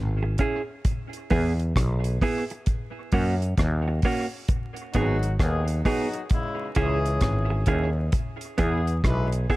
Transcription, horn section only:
4.93 5.31 F#3 medium
4.93 5.30 D#4 medium
4.93 5.30 F#4 loud
5.40 5.63 D#3 medium
5.40 5.63 B3 medium
5.40 5.62 G#4 medium
5.84 6.21 F#3 medium
5.84 6.21 D#4 medium
5.84 6.22 F#4 medium
6.32 6.68 C#3 medium
6.32 6.68 G#3 medium
6.32 6.68 E4 medium
6.77 7.64 E3 medium
6.77 7.64 C#4 medium
6.77 7.64 G#4 medium
8.59 8.95 E3 medium
8.59 8.95 B3 medium
8.59 8.95 G#4 medium
9.04 9.27 G#3 medium
9.04 9.27 E4 medium
9.04 9.27 B4 medium
9.49 9.56 E3 medium
9.49 9.56 B3 medium
9.49 9.56 G#4 medium

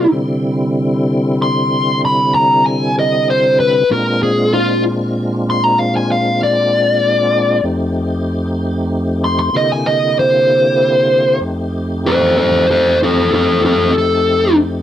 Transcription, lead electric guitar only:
1.42 2.00 C6 medium
2.05 2.33 B5 medium
2.35 2.63 A#5 medium
2.66 2.94 G#5 medium
2.99 3.27 D#5 medium
3.30 3.58 C5 medium
3.60 3.88 B4 medium
3.92 4.20 A#4 medium
4.23 4.51 G#4 medium
4.54 4.82 F4 medium
5.50 5.64 C6 medium
5.64 5.77 A#5 medium
5.79 5.92 F5 medium
5.96 6.09 G#5 medium
6.12 6.40 F5 medium
6.43 7.62 D5 medium
9.24 9.38 C6 medium
9.39 9.53 C6 medium
9.57 9.70 D#5 medium
9.72 9.85 G#5 medium
9.87 10.16 D#5 medium
10.19 11.39 C5 medium
12.06 12.36 A4 medium
12.06 12.36 C5 medium
12.38 12.66 A4 medium
12.38 12.67 C5 medium
12.71 12.98 A4 medium
12.71 12.99 C5 medium
13.03 13.30 F4 medium
13.03 13.31 A4 medium
13.34 13.61 F4 medium
13.34 13.62 A4 medium
13.65 13.92 F4 medium
13.65 13.94 A4 medium
13.98 14.56 A4 loud

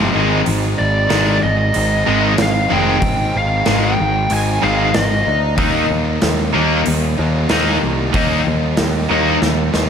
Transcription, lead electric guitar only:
0.79 1.43 D5 medium
1.43 2.35 D#5 medium
2.42 2.73 F5 medium
2.73 3.37 G5 medium
3.38 3.81 F5 medium
3.84 4.33 G5 loud
4.33 4.62 G#5 loud
4.64 4.93 F5 medium
4.96 5.40 D#5 medium

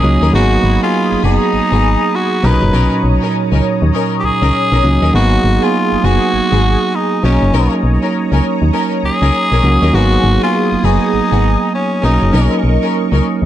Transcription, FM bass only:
0.03 0.18 C#2 medium
0.22 0.31 D#2 medium
0.33 0.58 G#1 loud
0.63 0.78 G#1 medium
1.12 1.17 F#1 soft
1.23 1.39 F#1 medium
1.53 1.61 G#1 soft
1.72 1.97 G#1 medium
2.43 2.59 B1 loud
2.62 2.71 F#1 medium
2.73 2.89 B1 loud
3.04 3.19 B1 medium
3.52 3.61 C#2 medium
3.82 3.91 D#2 loud
4.24 4.31 C#2 soft
4.42 4.51 C#2 medium
4.72 4.81 B1 loud
4.84 4.99 C#2 loud
5.02 5.11 D#2 medium
5.14 5.38 G#1 loud
5.44 5.59 G#1 medium
5.92 5.97 F#1 soft
6.04 6.19 F#1 loud
6.34 6.41 G#1 soft
6.52 6.77 G#1 loud
7.23 7.39 B1 loud
7.42 7.51 F#1 medium
7.54 7.69 B1 loud
7.83 7.98 B1 medium
8.32 8.41 C#2 loud
8.62 8.71 D#2 medium
9.03 9.11 C#2 soft
9.22 9.31 C#2 medium
9.52 9.61 B1 medium
9.63 9.79 C#2 loud
9.82 9.91 D#2 loud
9.93 10.18 G#1 loud
10.23 10.38 G#1 loud
10.72 10.77 F#1 soft
10.83 10.99 F#1 medium
11.14 11.21 G#1 soft
11.32 11.57 G#1 loud
12.03 12.19 B1 loud
12.22 12.31 F#1 medium
12.33 12.49 B1 loud
12.63 12.79 B1 medium
13.12 13.21 C#2 loud
13.42 13.46 D#2 medium

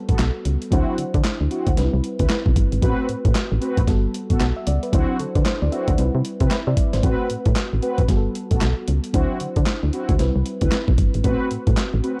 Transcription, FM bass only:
0.09 0.17 A1 medium
0.19 0.31 B1 medium
0.46 0.57 C#2 medium
0.72 0.84 D2 loud
0.98 1.05 D3 medium
1.15 1.22 D3 loud
1.41 1.48 D2 medium
1.67 1.75 D2 medium
1.78 1.89 C2 medium
1.93 2.01 C2 loud
2.20 2.27 D2 medium
2.46 2.54 B1 loud
2.56 2.68 G1 medium
2.72 2.80 G#1 medium
2.83 2.94 A1 loud
3.09 3.16 A2 medium
3.25 3.33 A2 medium
3.52 3.59 A1 medium
3.78 3.85 A1 medium
3.88 4.07 G1 loud
4.30 4.38 A1 medium
4.41 4.53 B1 medium
4.67 4.79 C#2 medium
4.93 5.05 D2 loud
5.20 5.26 D3 soft
5.36 5.43 D3 medium
5.62 5.70 D2 loud
5.88 5.96 D2 medium
5.99 6.10 C2 loud
6.15 6.22 C3 medium
6.41 6.48 C3 medium
6.67 6.75 C3 loud
6.94 7.01 G#1 medium
7.04 7.16 A1 loud
7.31 7.37 A2 soft
7.46 7.54 A2 loud
7.73 7.80 A1 medium
7.99 8.06 A1 medium
8.09 8.28 G1 loud
8.51 8.59 A1 medium
8.62 8.74 B1 loud
8.88 9.00 C#2 medium
9.14 9.26 D2 loud
9.41 9.47 D3 soft
9.57 9.64 D3 loud
9.83 9.91 D2 medium
10.09 10.17 D2 medium
10.20 10.31 C2 medium
10.36 10.43 C2 loud
10.62 10.69 D2 medium
10.88 10.96 B1 loud
10.98 11.10 G1 medium
11.15 11.22 G#1 medium
11.25 11.36 A1 loud
11.51 11.58 A2 medium
11.67 11.75 A2 medium
11.94 12.01 A1 loud

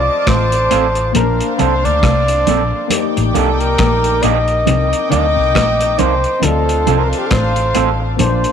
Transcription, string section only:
0.00 1.11 F4 medium
0.00 1.11 A5 medium
0.00 1.11 D6 medium
1.15 2.88 D4 medium
1.15 2.88 C5 medium
1.15 2.88 F5 loud
2.92 4.64 D#4 medium
2.92 4.64 G5 loud
2.92 4.64 D6 medium
4.67 6.40 D#4 loud
4.67 6.40 G5 loud
4.67 6.40 D6 medium
6.43 8.16 D4 medium
6.43 8.16 C5 medium
6.43 8.16 F5 loud
8.19 8.52 A#3 medium
8.19 8.52 F4 medium
8.19 8.52 D5 loud

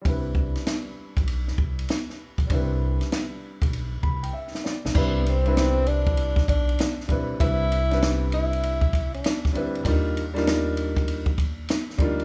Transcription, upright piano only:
0.02 2.44 G3 medium
0.02 2.46 C4 medium
0.02 2.46 D4 medium
0.07 2.47 E4 medium
0.07 2.48 B4 medium
2.47 4.89 G3 medium
2.47 4.90 C4 medium
2.51 4.91 D4 medium
2.51 4.93 E4 medium
2.55 4.93 B4 medium
4.03 4.22 B5 medium
4.23 4.33 G5 medium
4.33 4.62 E5 medium
4.64 4.93 D5 medium
4.94 5.29 G3 medium
4.94 5.30 C4 medium
4.94 5.30 D4 medium
4.94 5.31 E4 medium
4.94 5.31 B4 medium
5.44 6.35 G3 medium
5.44 6.35 C4 medium
5.44 6.36 D4 medium
5.44 6.36 E4 medium
5.44 6.37 B4 medium
7.08 7.34 G3 medium
7.08 7.34 C4 medium
7.08 7.35 D4 medium
7.08 7.35 E4 medium
7.08 7.36 B4 medium
7.38 7.74 G3 medium
7.38 7.75 C4 medium
7.38 7.75 D4 medium
7.38 7.76 E4 medium
7.38 7.76 B4 medium
7.90 8.80 G3 medium
7.90 8.80 C4 medium
7.90 8.81 D4 medium
7.90 8.81 E4 medium
7.90 8.82 B4 medium
9.53 9.79 G3 medium
9.53 9.79 C4 medium
9.53 9.80 D4 medium
9.53 9.80 E4 medium
9.57 9.81 B4 medium
9.83 10.19 G3 medium
9.83 10.19 A#3 medium
9.83 10.20 D4 medium
9.83 10.20 D#4 medium
9.87 10.21 F4 medium
10.34 11.24 G3 medium
10.34 11.25 A#3 medium
10.34 11.26 D4 medium
10.34 11.26 D#4 medium
10.34 11.26 F4 medium
11.98 12.24 G3 medium
11.98 12.24 A#3 medium
11.98 12.24 D4 medium
11.98 12.24 D#4 medium
11.98 12.24 F4 medium

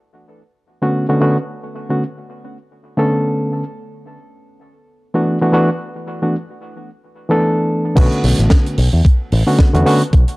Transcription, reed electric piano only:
0.82 1.05 D3 medium
0.82 1.06 A3 medium
0.82 1.06 B3 medium
0.82 1.06 C#4 medium
0.82 1.06 F#4 medium
1.09 1.19 D3 medium
1.09 1.19 A3 medium
1.09 1.19 B3 medium
1.09 1.19 C#4 medium
1.09 1.20 F#4 medium
1.21 1.37 D3 medium
1.21 1.37 A3 medium
1.21 1.37 B3 medium
1.21 1.37 C#4 medium
1.21 1.37 F#4 medium
1.89 2.02 D3 medium
1.89 2.03 A3 medium
1.89 2.03 B3 medium
1.89 2.03 C#4 medium
1.89 2.03 F#4 medium
2.97 3.62 D3 medium
2.97 3.62 A3 medium
2.97 3.63 B3 medium
2.97 3.63 C#4 medium
2.97 3.63 A4 medium
5.14 5.38 E3 medium
5.14 5.38 A3 medium
5.14 5.38 B3 medium
5.14 5.38 D4 medium
5.14 5.38 F#4 medium
5.41 5.51 E3 medium
5.41 5.52 A3 medium
5.41 5.52 B3 medium
5.41 5.52 D4 medium
5.41 5.52 F#4 medium
5.53 5.69 E3 medium
5.53 5.69 A3 medium
5.53 5.69 B3 medium
5.53 5.69 D4 medium
5.53 5.69 F#4 medium
6.22 6.35 E3 medium
6.22 6.35 A3 medium
6.22 6.35 B3 medium
6.22 6.35 D4 medium
6.22 6.35 F#4 medium
7.29 7.94 E3 medium
7.29 7.95 A3 medium
7.29 7.95 B3 medium
7.29 7.95 D4 medium
7.29 7.95 A4 loud
7.95 8.77 D3 loud
7.95 8.78 A3 medium
7.95 8.78 B3 medium
7.95 8.78 C#4 medium
7.95 8.78 F#4 loud
9.47 9.70 D3 medium
9.47 9.70 A3 medium
9.47 9.70 B3 medium
9.47 9.71 C#4 medium
9.47 9.71 F#4 loud
9.73 9.84 D3 medium
9.73 9.84 A3 medium
9.73 9.84 B3 medium
9.73 9.84 C#4 medium
9.73 9.84 F#4 loud
9.85 10.01 D3 medium
9.85 10.01 A3 medium
9.85 10.02 B3 medium
9.85 10.02 C#4 medium
9.85 10.02 F#4 medium

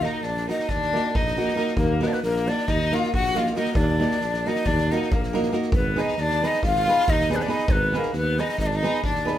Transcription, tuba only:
0.23 0.51 A#1 loud
0.69 0.97 D#2 medium
1.15 1.52 A#1 medium
1.76 2.04 D#2 loud
2.23 2.50 A#1 loud
2.68 2.96 D#2 loud
3.14 3.51 A#1 medium
3.76 4.03 D#2 loud
4.21 4.48 A#1 loud
4.66 4.93 D#2 loud
5.12 5.48 A#1 medium
5.72 5.99 G#1 loud
6.17 6.45 D#2 loud
6.63 6.90 G#1 loud
7.08 7.44 D#2 loud
7.68 7.95 G#1 loud
8.13 8.40 D#2 loud
8.59 8.86 G#1 loud
9.03 9.38 D#2 medium

